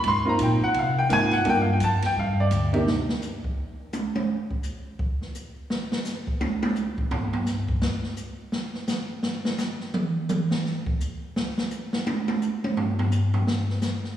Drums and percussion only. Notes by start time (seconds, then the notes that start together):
0.04 kick, ride
0.39 kick, hi-hat pedal, ride
0.74 kick, ride
1.10 kick, hi-hat pedal, ride
1.31 snare, ride
1.45 kick, ride
1.80 kick, hi-hat pedal, ride
2.02 snare, ride
2.16 kick
2.51 kick, hi-hat pedal, ride
2.74 ride
2.87 snare
3.09 snare
3.22 hi-hat pedal
3.44 kick
3.93 hi-hat pedal, high tom
4.15 high tom
4.51 kick
4.63 hi-hat pedal
4.99 kick
5.21 snare
5.35 hi-hat pedal
5.70 snare
5.92 snare
6.05 snare, hi-hat pedal
6.27 kick
6.41 high tom
6.62 high tom
6.75 hi-hat pedal, high tom
6.98 kick
7.11 floor tom
7.33 floor tom
7.46 snare, hi-hat pedal
7.68 kick
7.82 snare
8.04 snare
8.16 hi-hat pedal
8.52 snare
8.74 snare
8.87 snare, hi-hat pedal
9.23 snare
9.45 snare
9.58 snare, hi-hat pedal
9.80 snare
9.94 mid tom
10.29 hi-hat pedal, mid tom
10.51 snare
10.65 snare
10.86 kick
11.00 hi-hat pedal
11.36 snare
11.58 snare
11.71 hi-hat pedal
11.93 snare
12.07 high tom
12.28 high tom
12.41 hi-hat pedal
12.64 high tom
12.77 floor tom
12.99 floor tom
13.11 hi-hat pedal
13.34 floor tom
13.47 snare
13.70 snare
13.81 snare, hi-hat pedal
14.04 snare